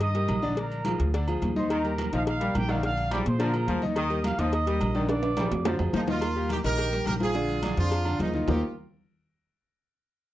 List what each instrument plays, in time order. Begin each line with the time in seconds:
Already playing: upright bass G2
0.00 trumpet section D#5 D#6, cowbell, high conga, low agogo
0.14 grand piano G3 G4 A#4, cowbell, high conga
0.28 upright bass A#1, cowbell, high conga, low agogo
0.42 grand piano D3 D4 D5, high conga, low agogo
0.56 grand piano D3 D4 D5, trumpet section A#4 A#5, cowbell, high conga
0.71 high conga, low agogo
0.85 grand piano F3 F4 G#4, cowbell, high conga, low agogo
0.99 upright bass D2, cowbell, high conga
1.13 grand piano D3 D4 D5, cowbell, high conga, low agogo
1.27 grand piano F3 F4 G#4, high conga, low agogo
1.42 upright bass D#2, cowbell, high conga, low agogo
1.56 grand piano D#3 D#4 D#5, trumpet section C5 C6, high conga
1.70 trombone section D#3, trumpet section A#4 A#5, cowbell, high conga, low agogo
1.84 grand piano G3 G4 A#4, high conga, low agogo
1.98 cowbell, high conga, low agogo
2.12 upright bass A#1, grand piano D#3 D#4 D#5, trombone section F3, trumpet section F5, cowbell, high conga
2.27 trumpet section F5, cowbell, high conga, low agogo
2.40 trombone section G3, grand piano G3 G4 A#4, cowbell
2.55 upright bass A#1, trumpet section G4 G5, cowbell, high conga, low agogo
2.69 grand piano D3 D4 D5, trombone section D#3, trumpet section F5, high conga, low agogo
2.83 grand piano D3 D4 D5, trumpet section F5, cowbell, high conga
2.97 high conga, low agogo
3.11 grand piano F3 F4 G#4, trombone section G3, trumpet section D5 D6, cowbell, high conga, low agogo
3.26 upright bass A#2, trumpet section C5 C6, cowbell, high conga
3.39 grand piano D3 D4 D5, trombone section F3, trumpet section A#4 A#5, cowbell, high conga, low agogo
3.53 grand piano F3 F4 G#4, high conga, low agogo
3.68 upright bass D#2, trombone section F3, cowbell, high conga, low agogo
3.82 grand piano D#3 D#4 D#5, high conga
3.96 trombone section D#3, trumpet section D#5 D#6, cowbell, high conga, low agogo
4.10 grand piano G3 G4 A#4, high conga, low agogo
4.24 trumpet section F5, cowbell, high conga, low agogo
4.38 upright bass D#2, grand piano D#3 D#4 D#5, trombone section F3, trumpet section D#5 D#6, cowbell, high conga
4.52 trumpet section D#5 D#6, cowbell, high conga, low agogo
4.66 grand piano G3 G4 A#4, trombone section G3, cowbell, high conga
4.81 upright bass A#1, cowbell, high conga, low agogo
4.95 grand piano D3 D4 D5, trombone section D#3, high conga, low agogo
5.09 grand piano D3 D4 D5, trumpet section D5 D6, cowbell, high conga, high timbale
5.23 high conga, high timbale, low agogo
5.37 grand piano F3 F4 G#4, trombone section G3, cowbell, high conga, high timbale, low agogo
5.51 upright bass F2, cowbell, high conga, low timbale
5.65 grand piano D3 D4 D5, trombone section F3, cowbell, high bongo, low timbale, low agogo
5.79 upright bass F2, grand piano F3 F4 G#4, high conga, low timbale, low agogo
5.93 upright bass D#2, trombone section F3, horn section A#3 D#4, cowbell, low bongo, high conga, low agogo
6.08 grand piano D#3 D#4 D#5, horn section A#3 F4, low bongo, high conga, low timbale
6.21 cowbell, high conga, low agogo
6.36 grand piano G3 G4 A#4, high conga, low agogo
6.49 horn section D#4 G4, cowbell, high conga, low agogo
6.64 upright bass A#1, grand piano D#3 D#4 D#5, horn section G4 A#4, cowbell, high conga
6.78 cowbell, high conga, low agogo
6.92 grand piano G3 G4 A#4, cowbell, high conga
7.06 upright bass A#1, horn section G4 A#4, cowbell, high conga, low agogo
7.20 grand piano F3 F4 G#4, horn section F4 G#4, high conga, low agogo
7.35 grand piano D3 D4 D5, cowbell, high conga
7.49 high conga, low agogo
7.63 grand piano D3 D4 D5, cowbell, high conga, low agogo
7.77 upright bass F2, grand piano F3 F4 G#4, horn section D4 F4, cowbell, high conga
7.91 cowbell, high conga, low agogo
8.05 grand piano D3 D4 D5, high conga, low agogo
8.19 upright bass D#2, grand piano F3 F4 G#4, horn section A#3 D#4, cowbell, high conga, low agogo
8.34 grand piano D#3 D#4 D#5, horn section A#3 F4, high conga
8.47 upright bass D#2, grand piano D#3 A#3 D#4 F4 G4 A#4, horn section G4, low bongo, low conga, low timbale